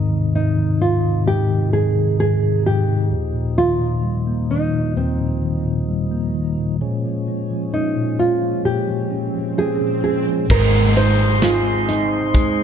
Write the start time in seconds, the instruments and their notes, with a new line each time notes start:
Already playing: tine electric piano D#2 G#2 D#3, tonewheel organ C3 D#3 D#4
0.11 tine electric piano D#3
0.34 tine electric piano G#2, nylon-string guitar D#4
0.57 tine electric piano D#3
0.80 tine electric piano G#2, nylon-string guitar F4
1.03 tine electric piano D#3
1.26 tine electric piano G#2, nylon-string guitar G4
1.49 tine electric piano D#3
1.73 tine electric piano G#2, nylon-string guitar G#4
1.95 tine electric piano D#3
2.19 tine electric piano G#2, nylon-string guitar G#4
2.42 tine electric piano D#3
2.65 tine electric piano G#2, nylon-string guitar G4
2.88 tine electric piano D#3
3.11 tine electric piano D#2, tonewheel organ A#2 F3
3.34 tine electric piano A#2
3.57 tine electric piano D#3, nylon-string guitar F4
3.79 tine electric piano A#2
4.03 tine electric piano G3
4.27 tine electric piano A#3
4.49 tine electric piano D#3, nylon-string guitar D#4
4.73 tine electric piano A#2
4.96 tine electric piano D#2, nylon-string guitar C4
5.20 tine electric piano A#2
5.42 tine electric piano D#3
5.65 tine electric piano A#2
5.89 tine electric piano G3
6.11 tine electric piano A#3
6.35 tine electric piano D#3
6.58 tine electric piano A#2
6.81 tine electric piano A#2, tonewheel organ F3 G#3 C#4
7.05 tine electric piano F3
7.28 tine electric piano C#4
7.50 tine electric piano F3
7.73 tine electric piano C#4, nylon-string guitar D#4
7.96 tine electric piano A#2
8.19 tine electric piano C#4, nylon-string guitar F4
8.42 tine electric piano F3
8.65 tine electric piano A#2, nylon-string guitar G4
8.88 tine electric piano F3
9.11 tine electric piano C#4
9.34 tine electric piano F3
9.58 tine electric piano C#4, nylon-string guitar G4 G#4
9.81 tine electric piano A#2
10.04 tine electric piano C#4, nylon-string guitar G#4
10.27 tine electric piano F3
10.50 fingered electric bass G#1, steel-string acoustic guitar G#2, tonewheel organ G#3 C5 D#5 C6, tine electric piano G#3, nylon-string guitar A#4, kick, crash, downlifter
10.96 steel-string acoustic guitar D#4, nylon-string guitar C5, closed hi-hat
11.42 steel-string acoustic guitar C4 D#4 G#4, tine electric piano D#4 G#4 C5, nylon-string guitar F4, snare, closed hi-hat
11.88 nylon-string guitar D#4, closed hi-hat
12.34 steel-string acoustic guitar G#3, tine electric piano D#4 G#4 C5, kick, closed hi-hat